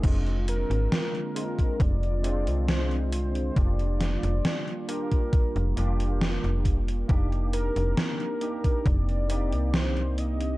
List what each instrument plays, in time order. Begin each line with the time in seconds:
0.02 fm bass F1, ambient pad D3 G#3 A#3 F4, tine electric piano G#3 C4 D4 F4, kick, closed hi-hat, crash
0.27 closed hi-hat
0.48 soft synth lead A#4, closed hi-hat
0.70 fm bass G#1, closed hi-hat
0.92 snare, closed hi-hat
1.15 closed hi-hat
1.35 tine electric piano G#3 C4 D4 F4, closed hi-hat
1.59 kick, closed hi-hat
1.79 fm bass F1, ambient pad C4, soft synth lead D5, kick, closed hi-hat
2.03 closed hi-hat
2.23 tine electric piano G#3 C4 D4 F4, closed hi-hat
2.47 fm bass C2, closed hi-hat
2.68 soft synth lead C5, snare, closed hi-hat
2.91 closed hi-hat
3.12 soft synth lead C5, closed hi-hat
3.35 closed hi-hat
3.55 fm bass F1, ambient pad D#3 G3 D4, tine electric piano A#3 D4 F4 G4, soft synth lead D5, kick, closed hi-hat
3.79 closed hi-hat
4.01 snare, closed hi-hat
4.23 fm bass F1, closed hi-hat
4.45 snare, closed hi-hat
4.68 closed hi-hat
4.88 tine electric piano A#3 D4 F4 G4, soft synth lead A#4, closed hi-hat
5.11 kick, closed hi-hat
5.33 kick, closed hi-hat
5.56 fm bass F1, closed hi-hat
5.76 fm bass F1, tine electric piano A#3 D4 F4 G4, closed hi-hat
6.00 closed hi-hat
6.21 snare, closed hi-hat
6.44 fm bass F1, closed hi-hat
6.65 kick, closed hi-hat
6.88 closed hi-hat
7.08 fm bass F1, tine electric piano A#3 D4 D#4 G4, ambient pad A#3 C4, kick, closed hi-hat
7.32 closed hi-hat
7.53 soft synth lead A#4, closed hi-hat
7.76 fm bass F1, closed hi-hat
7.97 snare, closed hi-hat
8.20 closed hi-hat
8.41 tine electric piano A#3 D4 D#4 G4, closed hi-hat
8.64 kick, closed hi-hat
8.85 fm bass F1, soft synth lead D5, kick, closed hi-hat
9.09 closed hi-hat
9.28 tine electric piano A#3 C4 D#4 G4, closed hi-hat
9.52 fm bass C2, closed hi-hat
9.74 soft synth lead C5, snare, closed hi-hat
9.97 closed hi-hat
10.18 soft synth lead D#5, closed hi-hat
10.41 closed hi-hat